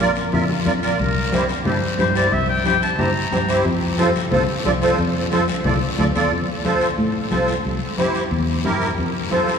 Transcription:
Already playing: fingered electric bass A#1
0.00 accordion F4 A#4 D5, short guiro
0.15 short guiro
0.32 fingered electric bass F2, accordion F4 A#4 E5, low conga, long guiro
0.49 high conga
0.65 fingered electric bass F2, accordion F4 A#4 D5, high conga, short guiro
0.82 accordion F4 A#4 D5, clarinet A#4, short guiro
0.99 fingered electric bass C2, clarinet A#4, long guiro
1.32 accordion E4 G4 C5, high conga, short guiro
1.49 short guiro
1.65 fingered electric bass G2, accordion E4 G4 A4, clarinet C5, low conga, long guiro
1.98 fingered electric bass G2, accordion E4 G4 C5, clarinet C5, high conga, short guiro
2.15 accordion E4 G4 C5, clarinet D5, short guiro
2.32 fingered electric bass C2, clarinet E5, long guiro
2.49 clarinet G5
2.64 accordion E4 G4 C5, clarinet G5, high conga, short guiro
2.82 clarinet A5, short guiro
2.98 fingered electric bass G2, accordion E4 G4 C5, clarinet A#5, low conga, long guiro
3.31 fingered electric bass G2, accordion E4 G4 C5, high conga, short guiro
3.48 accordion E4 G4 C5, short guiro
3.65 fingered electric bass F2, long guiro
3.98 accordion F4 A4 C5, high conga, short guiro
4.15 short guiro
4.31 fingered electric bass C2, accordion F4 A4 C5, low conga, long guiro
4.65 fingered electric bass C2, accordion F4 A4 D5, high conga, short guiro
4.82 accordion F4 A4 C5, short guiro
4.98 fingered electric bass F2, long guiro
5.31 accordion F4 A4 C5, high conga, short guiro
5.48 short guiro
5.64 fingered electric bass C2, accordion F4 A4 D5, low conga, long guiro
5.98 fingered electric bass D2, accordion F4 A4 D5, high conga, short guiro
6.15 fingered electric bass E2, accordion F4 A4 D5, short guiro
6.31 fingered electric bass F2, long guiro
6.64 accordion F4 A4 C5, high conga, short guiro
6.81 short guiro
6.98 fingered electric bass A2, long guiro
7.30 fingered electric bass C2, accordion F4 A4 C5, high conga, short guiro
7.48 short guiro
7.65 fingered electric bass C2, long guiro
7.98 accordion E4 G4 C5, high conga, short guiro
8.15 short guiro
8.31 fingered electric bass E2, long guiro
8.64 fingered electric bass G2, accordion E4 G4 A#4, high conga, short guiro
8.81 short guiro
8.98 fingered electric bass F2, long guiro
9.31 accordion F4 A4 C5, high conga, short guiro
9.48 short guiro

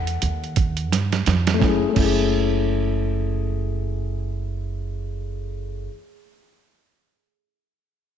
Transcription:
Already playing: upright bass E2, grand piano A4 F#5
0.07 closed hi-hat
0.22 upright bass D#2, closed hi-hat
0.44 closed hi-hat
0.56 kick, closed hi-hat
0.77 closed hi-hat
0.92 upright bass G2, snare, closed hi-hat
1.12 snare, closed hi-hat
1.26 upright bass F2, snare, closed hi-hat
1.47 snare, closed hi-hat
1.54 grand piano A3
1.59 upright bass F#1, grand piano C#4, kick, snare
1.64 grand piano E4
1.69 grand piano G#4
1.89 grand piano A3
1.94 upright bass F#1, grand piano C#4, kick, crash
1.99 grand piano E4
2.04 grand piano G#4

